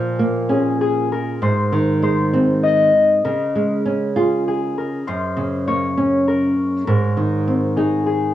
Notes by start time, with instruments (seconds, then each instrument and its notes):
Already playing: nylon-string guitar A#2 F3, harp A#4 C5 D#5
0.19 nylon-string guitar A#3
0.49 nylon-string guitar C#4, harp G#4
0.81 harp G#4
1.12 harp A#4
1.42 nylon-string guitar G#2, harp C5
1.72 nylon-string guitar D#3
2.02 nylon-string guitar G#3, harp C5
2.33 nylon-string guitar C4
2.63 harp D#5
3.25 nylon-string guitar C#3, harp A#4
3.55 nylon-string guitar G#3
3.86 nylon-string guitar C#4
4.16 nylon-string guitar F4, harp G#4
4.48 harp G#4
4.78 harp A#4
5.07 nylon-string guitar F#2, harp C5
5.37 nylon-string guitar C#3
5.67 nylon-string guitar A#3, harp C#5
5.97 nylon-string guitar C#4
6.28 harp A#4
6.87 nylon-string guitar G#2, harp A#4
7.17 nylon-string guitar D#3
7.48 nylon-string guitar C4
7.76 nylon-string guitar D#4, harp G#4
8.06 harp G#4